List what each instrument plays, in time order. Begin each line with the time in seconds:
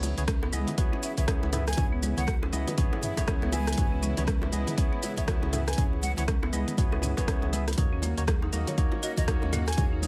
Already playing: sub bass C#2, string section C#3 E3 G#3 B3 E4, tine electric piano B3 E4 G#4 C#5
0.03 closed hi-hat, low bongo, muted conga, high conga, shaker
0.17 sub bass C#2, tine electric piano B3 E4 G#4 C#5, closed hi-hat, low conga, shaker
0.28 marimba C#4, kick, cross-stick, closed hi-hat, low bongo, muted conga, high conga, shaker
0.43 marimba B3, high bongo
0.53 sub bass C#2, marimba G#3, tine electric piano B3 E4 G#4 D#5, closed hi-hat, high conga, shaker
0.67 closed hi-hat, low bongo, muted conga, low conga, shaker
0.78 sub bass C#2, tine electric piano B3 E4 G#4 C#5, marimba F#4, kick, closed hi-hat, shaker
0.93 marimba C#4, low bongo, muted conga
1.03 marimba C#4, flute E5, closed hi-hat, shaker
1.17 sub bass C#2, tine electric piano B3 E4 G#4 C#5, marimba B4, flute E5, kick, closed hi-hat, low bongo, muted conga, low conga, shaker
1.28 marimba C#4, kick, cross-stick, closed hi-hat, shaker
1.43 sub bass C#2, high bongo, muted conga
1.53 tine electric piano B3 E4 G#4 E5, closed hi-hat, mid tom, high bongo, low bongo, shaker
1.68 flute G#5, cross-stick, closed hi-hat, shaker
1.73 closed hi-hat
1.77 sub bass C#2, tine electric piano B3 E4 G#4 C#5, marimba C#4, kick, closed hi-hat, mid tom, low bongo, muted conga, shaker
1.93 marimba B3
2.03 marimba G#3, closed hi-hat, low bongo, muted conga, high conga, shaker
2.17 sub bass C#2, tine electric piano B3 E4 G#4 C#5, flute F#5, closed hi-hat, low conga, shaker
2.27 marimba F#4, kick, cross-stick, closed hi-hat, muted conga, high conga, shaker
2.42 marimba C#4, high bongo, low bongo
2.53 sub bass C#2, tine electric piano B3 E4 G#4 D#5, marimba C#4, closed hi-hat, high conga, shaker
2.67 marimba B4, closed hi-hat, low bongo, muted conga, low conga, shaker
2.78 sub bass C#2, tine electric piano B3 E4 G#4 C#5, marimba C#4, kick, closed hi-hat, mid tom, shaker
2.92 high bongo, low bongo, muted conga
3.03 flute E5, closed hi-hat, mid tom, shaker
3.17 sub bass C#2, tine electric piano B3 E4 G#4 C#5, kick, closed hi-hat, high bongo, muted conga, shaker
3.28 marimba C#4, kick, cross-stick, closed hi-hat, low bongo, shaker
3.42 sub bass C#2, marimba B3, high bongo, muted conga
3.52 marimba G#3, tine electric piano B3 E4 G#4 E5, flute G#5, closed hi-hat, low bongo, high conga, shaker
3.67 cross-stick, closed hi-hat, shaker
3.73 closed hi-hat
3.78 sub bass C#2, tine electric piano B3 E4 G#4 C#5, marimba F#4, kick, closed hi-hat, mid tom, low bongo, muted conga, shaker
3.93 marimba C#4
4.03 marimba C#4, closed hi-hat, muted conga, high conga, shaker
4.17 sub bass C#2, tine electric piano B3 E4 G#4 C#5, marimba B4, closed hi-hat, low bongo, low conga, shaker
4.27 marimba C#4, kick, cross-stick, closed hi-hat, muted conga, high conga, shaker
4.42 high bongo, low bongo
4.52 sub bass C#2, tine electric piano B3 E4 G#4 D#5, closed hi-hat, high conga, shaker
4.67 closed hi-hat, low bongo, muted conga, low conga, shaker
4.77 sub bass C#2, tine electric piano B3 E4 G#4 C#5, marimba C#4, kick, closed hi-hat, shaker
4.92 marimba B3, muted conga
5.03 marimba G#3, flute E5, closed hi-hat, low bongo, shaker
5.17 sub bass C#2, tine electric piano B3 E4 G#4 C#5, flute E5, kick, closed hi-hat, muted conga, low conga, shaker
5.28 marimba F#4, kick, cross-stick, closed hi-hat, low bongo, shaker
5.42 sub bass C#2, marimba C#4, high bongo, muted conga
5.53 tine electric piano B3 E4 G#4 E5, marimba C#4, closed hi-hat, mid tom, high bongo, low bongo, shaker
5.67 marimba B4, flute G#5, cross-stick, closed hi-hat, shaker
5.73 closed hi-hat
5.78 sub bass C#2, tine electric piano B3 E4 G#4 C#5, marimba C#4, kick, closed hi-hat, mid tom, muted conga, shaker
5.93 low bongo
6.02 flute F#5, closed hi-hat, muted conga, high conga, shaker
6.17 sub bass C#2, tine electric piano B3 E4 G#4 C#5, flute F#5, closed hi-hat, low bongo, low conga, shaker
6.28 marimba C#4, kick, cross-stick, closed hi-hat, muted conga, high conga, shaker
6.43 marimba B3, high bongo, low bongo
6.52 sub bass C#2, marimba G#3, tine electric piano B3 E4 G#4 D#5, closed hi-hat, high conga, shaker
6.68 closed hi-hat, muted conga, low conga, shaker
6.77 sub bass C#2, tine electric piano B3 E4 G#4 C#5, marimba F#4, kick, closed hi-hat, mid tom, low bongo, shaker
6.92 marimba C#4, high bongo, muted conga
7.02 marimba C#4, closed hi-hat, mid tom, low bongo, shaker
7.17 sub bass C#2, tine electric piano B3 E4 G#4 C#5, marimba B4, kick, closed hi-hat, high bongo, muted conga, shaker
7.27 marimba C#4, kick, cross-stick, closed hi-hat, low bongo, shaker
7.42 sub bass C#2, high bongo, muted conga
7.53 tine electric piano B3 E4 G#4 E5, closed hi-hat, high conga, shaker
7.68 cross-stick, closed hi-hat, low bongo, shaker
7.73 closed hi-hat
7.77 sub bass D#2, string section D#3 F#3 A#3 C#4 F#4, tine electric piano A#3 D#4 F#4 C#5, marimba D#4, kick, closed hi-hat, mid tom, low bongo, muted conga, shaker
7.93 marimba C#4
8.02 marimba A#3, closed hi-hat, low bongo, muted conga, high conga, shaker
8.17 sub bass D#2, tine electric piano A#3 D#4 F#4 C#5, closed hi-hat, low conga, shaker
8.27 marimba G#4, kick, cross-stick, closed hi-hat, low bongo, muted conga, high conga, shaker
8.42 marimba D#4, high bongo
8.53 sub bass D#2, tine electric piano A#3 D#4 F#4 D#5, marimba D#4, closed hi-hat, high conga, shaker
8.67 marimba C#5, closed hi-hat, low bongo, muted conga, low conga, shaker
8.78 sub bass D#2, tine electric piano A#3 D#4 F#4 C#5, marimba D#4, kick, closed hi-hat, shaker
8.92 low bongo, muted conga
9.03 marimba F#4, flute D#5, closed hi-hat, shaker
9.17 sub bass D#2, tine electric piano A#3 D#4 F#4 C#5, flute D#5, kick, closed hi-hat, low bongo, muted conga, low conga, shaker
9.28 marimba D#4, kick, cross-stick, closed hi-hat, shaker
9.42 sub bass D#2, marimba C#4, high bongo, muted conga
9.52 tine electric piano A#3 D#4 F#4 F#5, marimba A#3, closed hi-hat, mid tom, high bongo, low bongo, shaker
9.67 flute G#5, cross-stick, closed hi-hat, shaker
9.72 closed hi-hat
9.77 sub bass D#2, tine electric piano A#3 D#4 F#4 C#5, marimba G#4, kick, closed hi-hat, mid tom, low bongo, muted conga, shaker
9.93 marimba D#4
10.02 marimba D#4, closed hi-hat, low bongo, muted conga, high conga, shaker